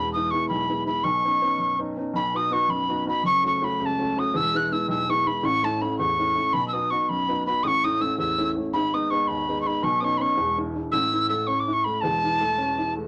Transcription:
Already playing: E1 E2 B5
0.13 G#3 B3 E4 D#6
0.31 G#3 B3 E4 C#6
0.48 B1 B5
0.69 G#3 B3 E4
0.86 G#3 B3 E4 B5
1.04 B1 B2 C#6
1.25 B3 C#4 D#4
1.41 B3 C#4 D#4
1.58 F#2
1.78 B3 C#4 D#4
1.97 B3 C#4 D#4
2.13 B1 B2 B5
2.34 B3 D#4 F#4 D#6
2.51 B3 D#4 F#4 C#6
2.68 F#2 B5
2.89 B3 D#4 F#4
3.06 B3 D#4 F#4 B5
3.23 F#1 F#2 C#6
3.44 A3 C#4 F#4 C#6
3.62 A3 C#4 F#4 B5
3.80 C#2 B5
3.86 A5
3.98 A3 C#4 F#4
4.17 A3 C#4 F#4 D#6
4.34 E1 E2 E6
4.54 G#3 B3 E4 F#6
4.71 G#3 B3 E4 E6
4.88 B1 E6
5.09 G#3 B3 E4 C#6
5.26 G#3 B3 E4 B5
5.43 A1 A2 C#6
5.63 A3 C#4 E4 A5
5.82 A3 C#4 E4 B5
5.98 E2 C#6
6.19 A3 C#4 E4
6.36 A3 C#4 E4
6.53 B1 B2 B5
6.68 E6
6.73 B3 D#4 F#4 D#6
6.90 B3 D#4 F#4 C#6
7.03 C#6
7.09 F#2 B5
7.28 B3 D#4 F#4
7.46 B3 D#4 F#4 B5
7.63 A1 A2 D#6
7.67 C#6
7.84 A3 C#4 E4 D#6
8.00 A3 C#4 E4 E6
8.18 E2 E6
8.38 A3 C#4 E4
8.57 A3 C#4 E4
8.73 G#1 G#2 B5
8.93 G#3 B3 D#4 D#6
9.10 G#3 B3 D#4 C#6
9.22 C#6
9.28 D#2 B5
9.48 G#3 B3 D#4
9.62 G#3 B3 D#4 C#6
9.67 B5
9.82 B1 B2 C#6
10.01 B3 C#4 D#4 C#6 D#6
10.18 B3 C#4 D#4 B5 C#6
10.37 E1 E2
10.57 G#3 D4 E4
10.75 G#3 D4 E4
10.92 A1 A2 E6
11.13 E3
11.29 A3 E6
11.47 C#4 C#6
11.60 D6
11.68 E4
11.73 C#6
11.84 A3 B5
11.94 B5
12.01 E1 E2 A5
12.24 E3
12.41 A3
12.58 C#4
12.78 E4
12.96 A3

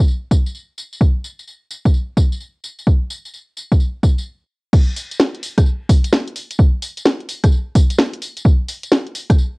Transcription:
0.08 tambourine
0.31 kick, tambourine
0.46 tambourine
0.54 tambourine
0.78 tambourine
0.93 tambourine
1.01 kick, tambourine
1.24 tambourine
1.39 tambourine
1.48 tambourine
1.71 tambourine
1.86 kick, tambourine
1.94 tambourine
2.17 kick, tambourine
2.32 tambourine
2.40 tambourine
2.64 tambourine
2.79 tambourine
2.87 kick, tambourine
3.10 tambourine
3.25 tambourine
3.34 tambourine
3.57 tambourine
3.72 kick, tambourine
3.80 tambourine
4.03 kick, tambourine
4.18 tambourine
4.73 kick, crash, tambourine
4.96 open hi-hat, tambourine
5.11 closed hi-hat, tambourine
5.20 snare
5.35 closed hi-hat
5.43 open hi-hat, tambourine
5.58 kick, cross-stick, closed hi-hat, tambourine
5.66 tambourine
5.89 kick, open hi-hat, tambourine
6.04 closed hi-hat, tambourine
6.13 snare, tambourine
6.28 closed hi-hat
6.36 open hi-hat, tambourine
6.51 closed hi-hat, tambourine
6.59 kick, tambourine
6.82 open hi-hat, tambourine
6.97 closed hi-hat, tambourine
7.05 snare
7.20 closed hi-hat
7.29 open hi-hat, tambourine
7.44 kick, cross-stick, closed hi-hat, tambourine
7.52 tambourine
7.75 kick, open hi-hat, tambourine
7.90 closed hi-hat, tambourine
7.99 snare
8.13 closed hi-hat
8.22 open hi-hat, tambourine
8.37 closed hi-hat, tambourine
8.45 kick, tambourine
8.68 open hi-hat, tambourine
8.83 closed hi-hat, tambourine
8.92 snare
9.07 closed hi-hat
9.15 open hi-hat, tambourine
9.30 kick, cross-stick, closed hi-hat, tambourine
9.38 tambourine

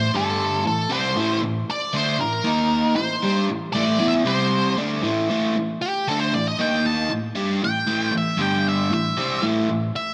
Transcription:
Already playing: C5
0.14 G2 D3 G3 A4
0.65 A2 E3 A4
0.90 C3 G3 C4 C5
1.17 A2 E3 A3
1.42 A2 E3
1.71 D5
1.94 D3 A3 D4 C5
2.19 A2 E3 A#4
2.44 D#3 A#3 D#4
2.96 A2 E3 C5
3.23 G3 D4 G4
3.49 A2 E3
3.73 A2 E3 A3 D5
4.00 E3 B3 E4
4.08 E5
4.24 C3 G3 C4 C5
4.77 D3 A3 D4
5.03 A2 E3 A3
5.29 A2 E3 A3
5.56 A2 E3
5.82 G4
6.08 D3 A3 D4 A4
6.20 C5
6.33 A2 E3 D5
6.48 D#5
6.59 D#3 A#3 D#4 G5
6.86 A5
7.10 A2 E3
7.36 G3 D4 G4
7.62 A2 E3 G5
7.87 A2 E3 A3
8.12 A2 E3
8.18 E5
8.37 G2 D3 G3
8.42 G5
8.69 E5
8.91 A2 E3 E5
9.17 C3 G3 C4
9.42 A2 E3 A3
9.69 A2 E3
9.96 E5

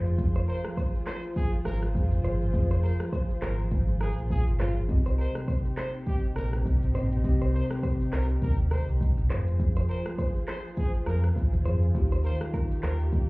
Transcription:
Already playing: F1 F3 F4 G#4 C5
0.06 shaker
0.18 kick, shaker
0.36 C5, shaker
0.48 A#4 C5
0.65 cross-stick, shaker
0.77 C5, kick, shaker
0.95 shaker
1.07 C5, cross-stick, clap, shaker
1.23 shaker
1.36 G#4, kick, shaker
1.53 shaker
1.65 G#1 A#4, cross-stick
1.83 cross-stick, shaker
1.95 F1, kick, shaker
2.12 mid tom, shaker
2.23 G#1 F3 F4 G#4 C5, mid tom, shaker
2.41 shaker
2.52 F1 F3 F4 G#4 C5, kick, shaker
2.71 C5, shaker
2.83 A#4 C5, open hi-hat, shaker
3.00 cross-stick, shaker
3.13 C5, kick, shaker
3.31 shaker
3.42 G#1 A#4 C5, cross-stick, clap, shaker
3.59 shaker
3.71 G#1, kick, shaker
3.88 shaker
4.01 G#4 A#4, cross-stick, open hi-hat, shaker
4.18 A#1, shaker
4.30 G#4, kick, shaker
4.47 G#1, mid tom, shaker
4.58 F3 F4 G#4 C5, cross-stick, clap, mid tom, shaker
4.77 G1, shaker
4.88 C2 C3 C4 D#4 G4 D#5, kick, shaker
5.06 C5, shaker
5.18 A#4 C5
5.35 cross-stick, shaker
5.48 C5, kick, shaker
5.66 shaker
5.77 C5, cross-stick, clap, shaker
5.94 shaker
6.06 G4, kick, shaker
6.23 shaker
6.36 A#1 A#4, cross-stick
6.53 cross-stick, shaker
6.66 C2, kick, shaker
6.82 mid tom, shaker
6.94 A#1 C3 C4 G4 C5 D#5, mid tom, shaker
7.12 shaker
7.23 C2 C3 C4 G4 D#5, kick, shaker
7.42 C5, shaker
7.54 A#4 C5
7.71 cross-stick, shaker
7.83 C5, kick, shaker
8.01 shaker
8.13 C2 A#4 C5, cross-stick, clap, shaker
8.29 shaker
8.42 D#2 A#4, kick, shaker
8.58 shaker
8.71 A#4 C5, cross-stick
8.89 C2, shaker
9.01 kick, shaker
9.18 C2, mid tom, shaker
9.29 F1 F3 F4 G#4 C5, clap, mid tom, shaker
9.47 shaker
9.60 kick, shaker
9.77 C5, shaker
9.89 A#4 C5
10.06 cross-stick, shaker
10.18 C5, kick, shaker
10.36 shaker
10.48 C5, cross-stick, clap, shaker
10.64 shaker
10.77 G#4, kick, shaker
10.94 shaker
11.06 F2 A#4, cross-stick
11.24 cross-stick, shaker
11.36 D#2, kick, shaker
11.53 mid tom, shaker
11.64 F2 F3 F4 G#4 C5, mid tom, shaker
11.83 shaker
11.94 D#2 D#3 D#4 F4 G4, kick, shaker
12.12 C5, shaker
12.24 A#4 C5, open hi-hat, shaker
12.41 cross-stick, shaker
12.54 A#4, kick, shaker
12.71 shaker
12.83 D#2 A#4 C5, cross-stick, clap, shaker
12.99 shaker
13.12 kick, shaker

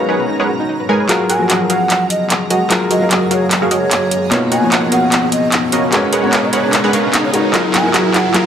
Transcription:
Already playing: G#2 F#3 G#3 B3 C#4 F#4 A#4 B4 C#5 A#5
0.09 G#3 D#4 G#4 A#4 B4 C#5 F#5
0.20 B4
0.29 D#4
0.40 G#3 G#4 A#4 B4 C#5 F#5
0.49 F#4
0.60 D#4
0.69 D#4
0.80 B4
0.89 G#3 D#4 G#4 A#4 B4 C#5 G#5
1.00 B4
1.08 F#2 C#3 F#3 G#3 F4 F#4 G#4 A#4 F5 A#5, clap, closed hi-hat, riser
1.29 F#3 F#4 G#4 A#4 F#5 G#5, closed hi-hat
1.38 F3 F#3 G#4 A#4
1.49 F#3 F#4 G#4 A#4 F#5, clap, closed hi-hat
1.70 F#3 F#4 G#4 A#4 F5 F#5, closed hi-hat
1.90 clap, closed hi-hat
2.10 D#5, closed hi-hat
2.30 clap, closed hi-hat
2.50 F#3 F#4 G#4 A#4 D#5 F#5, closed hi-hat
2.70 F#3 F4 G#4 A#4, clap, closed hi-hat
2.91 F#3 F#4 G#4 A#4 D#5 F5, closed hi-hat
2.99 F#3 G#4 A#4 F5
3.11 F#3 F#4 G#4 A#4 D#5, clap, closed hi-hat
3.31 F#3 F#4 G#4 A#4 C#5 F5, closed hi-hat
3.51 clap, closed hi-hat
3.62 F#3 F#4 G#4 A#4 F5
3.71 F#3 F#4 G#4 A#4 C#5 D#5, closed hi-hat
3.91 clap, closed hi-hat
4.11 closed hi-hat
4.31 B2 A#3 B3 C#4 D#4 F4 F#4 A#4 C#5 D#5 F5, clap, closed hi-hat
4.52 B3 F#4 A#4 C#5 D#5 F#5 G#5, closed hi-hat
4.60 B2 F3 A#3 D#4
4.64 C#5
4.72 B3 F#4 A#4 C#5 D#5 F#5, clap, closed hi-hat
4.92 B3 F#4 A#4 C#5 D#5 F5 F#5, closed hi-hat
5.12 clap, closed hi-hat
5.32 D#5, closed hi-hat
5.52 clap, closed hi-hat
5.72 B3 F#4 A#4 C#5 D#5 F5, closed hi-hat
5.92 G#2 G#3 B3 F#4 A#4 B4 C#5, clap, closed hi-hat
6.13 G#3 G#4 A#4 B4 C#5 F#5, closed hi-hat
6.22 G#3 B3 F#4 C#5 A#5
6.33 G#3 G#4 A#4 B4 C#5 F5, clap, closed hi-hat
6.44 D#5
6.53 G#3 G#4 A#4 B4 C#5 F#5, closed hi-hat
6.64 C#5
6.73 clap, closed hi-hat
6.84 G#3 G#4 A#4 B4 C#5 F#5
6.93 G#3 G#4 A#4 B4 C#5 F5, closed hi-hat
7.13 clap, closed hi-hat
7.24 C#5
7.33 G#3 F#4 A#4 B4 C#5, closed hi-hat
7.53 F#2 F#3 G#3 F4 F#4 G#4 A#4 F5, clap, closed hi-hat
7.74 F#3 F#4 G#4 A#4 F#5 G#5, clap, closed hi-hat
7.83 F#3 F4 G#4 A#4
7.94 F#3 F#4 G#4 A#4 F#5, clap, closed hi-hat
8.14 F#3 F#4 G#4 A#4 F5 F#5, clap, closed hi-hat
8.33 F#3 F4 F#4 G#4 A#4 F5, clap, closed hi-hat

